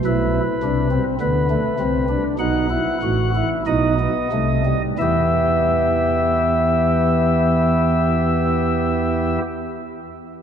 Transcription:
<<
  \new Staff \with { instrumentName = "Pipe organ" } { \time 4/4 \key e \minor \tempo 4 = 44 << { b'4 b'4 fis''4 dis''4 | <b g' e''>1 | } \\ { e'8 d'16 c'16 b16 a16 c'16 d'16 dis'16 e'16 fis'16 e'16 dis'16 b16 a16 g16 | e'1 | } >> }
  \new Staff \with { instrumentName = "Pipe organ" } { \clef bass \time 4/4 \key e \minor <b,, b,>8 <c, c>8 <d, d>8 <c, c>8 <b,, b,>8 <a,, a,>8 <b,, b,>8 <c, c>8 | <e, e>1 | }
>>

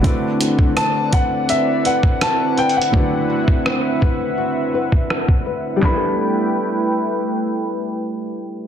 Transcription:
<<
  \new Staff \with { instrumentName = "Grand piano" } { \time 4/4 \key d \mixolydian \tempo 4 = 83 r4 a''8 fis''8 e''8 fis''8 a''8 g''16 fis''16~ | fis''2. r4 | b''1 | }
  \new Staff \with { instrumentName = "Analog synth pad" } { \time 4/4 \key d \mixolydian << { <c' e' b' fis''>1~ | <c' e' b' fis''>1 | <a e' b' g''>1 | } \\ { d''1 | e''1 | r1 | } >> }
  \new Staff \with { instrumentName = "Nylon-string guitar" } { \time 4/4 \key d \mixolydian d8 fis'8 c'8 b'8 fis'8 b'8 fis'8 b'8 | d8 fis'8 c'8 b'8 fis'8 b'8 fis'8 b'8 | <g b e' a'>1 | }
  \new Staff \with { instrumentName = "Felt piano" } { \time 4/4 \key d \mixolydian <d a c' e' fis' b'>1 | <d a c' e' fis' b'>1 | <g d' e' a' b'>1 | }
  \new DrumStaff \with { instrumentName = "Drums" } \drummode { \time 4/4 <hh bd>8 hh16 bd16 <hh ss>8 <hh bd>8 hh8 hh16 bd16 \tuplet 3/2 { <hh ss>16 r16 r16 hh16 hh16 hh16 } | bd8. bd16 ss8 bd8 r8. bd16 ss16 bd8. | <hc bd sn>4 r4 r4 r4 | }
>>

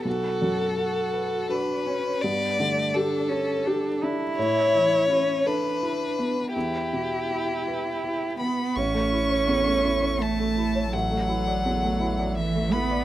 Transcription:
<<
  \new Staff \with { instrumentName = "Violin" } { \time 3/4 \key a \mixolydian \tempo 4 = 83 a'2 b'4 | d''4 a'4. r8 | cis''4. b'4. | g'2~ g'8 b''8 |
cis'''2 a''4 | fis''2 e''8 b''8 | }
  \new Staff \with { instrumentName = "Felt piano" } { \time 3/4 \key a \mixolydian b,,8 fis,8 fis'8 b'8 fis'8 cis'8 | g,8 d8 g'8 a'8 g'8 d'8 | a,8 e8 e'8 a'8 e'8 b8 | e,8 b,8 e'8 b'8 e'8 b8 |
a,,16 a16 e'16 cis''16 e,16 a16 e'16 cis''8 a16 e'16 cis''16 | a,,16 a16 e'16 d''16 e,16 a16 e'16 d''8 a16 e'16 d''16 | }
  \new Staff \with { instrumentName = "Cello" } { \time 3/4 \key a \mixolydian fis'4 fis'4 d'8 cis'8 | b8 a8 d'8 cis'8 d'8 e'8~ | e'4 cis'8 d'4. | e'2~ e'8 b8 |
cis'2 a4 | fis2 e8 b8 | }
  \new Staff \with { instrumentName = "Analog synth pad" } { \time 3/4 \key a \mixolydian << { r2. | r2. | r2. | r2. |
<e a'>2.~ | <e a'>2. | } \\ { r2. | r2. | r2. | r2. |
e'2. | d2. | } >> }
  \new Staff \with { instrumentName = "Sub bass" } { \clef bass \time 3/4 \key a \mixolydian r2. | r2. | r2. | r2. |
a,,2.~ | a,,2. | }
>>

